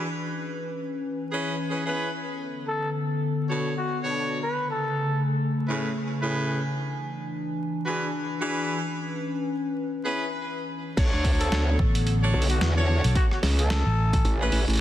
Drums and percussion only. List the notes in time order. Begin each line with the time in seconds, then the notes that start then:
10.97 kick, closed hi-hat, crash
11.13 cross-stick
11.25 kick, open hi-hat
11.41 closed hi-hat
11.52 snare, closed hi-hat
11.79 kick
11.95 closed hi-hat
12.07 closed hi-hat
12.42 open hi-hat
12.50 closed hi-hat
12.61 snare, closed hi-hat
13.04 closed hi-hat
13.15 kick, closed hi-hat
13.31 cross-stick
13.43 snare, open hi-hat
13.59 closed hi-hat
13.70 snare, closed hi-hat
14.13 kick, closed hi-hat
14.25 closed hi-hat
14.52 open hi-hat
14.68 closed hi-hat
14.70 closed hi-hat
14.73 closed hi-hat
14.76 closed hi-hat
14.77 closed hi-hat